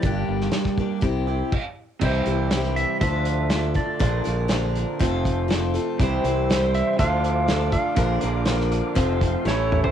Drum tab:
CC |------------x---|x---------------|----------------|----------------|
HH |x---x---x-------|--x-x-x-x-x-x-x-|x-x-x-x-x-x-x-x-|x-x-x-x-x-x-x-x-|
SD |---ooo----------|----oo------o---|----o-------o---|----o-------o---|
T2 |----------------|----------------|----------------|----------------|
FT |----------------|----------------|----------------|----------------|
BD |o----oo-o---o---|o-------o-----o-|o-------o-o-----|o-------o-----o-|

CC |----------------|
HH |x-x-x-x-x-x-----|
SD |----oo------o---|
T2 |--------------o-|
FT |---------------o|
BD |o-------o-o-----|